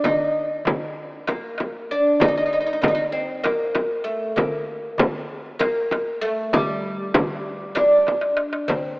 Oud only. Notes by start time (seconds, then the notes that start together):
0.04 D#4
1.27 A#3
1.91 D4
2.21 D#4
2.28 D#4
2.37 D#4
2.46 D#4
2.53 D#4
2.60 D#4
2.66 D#4
2.73 D#4
2.82 D#4
2.88 D#4
2.95 D#4
3.12 C4
3.44 A#3
4.04 A3
4.36 A#3
5.59 A#3
6.21 A3
6.53 G3
7.75 D4
8.68 C4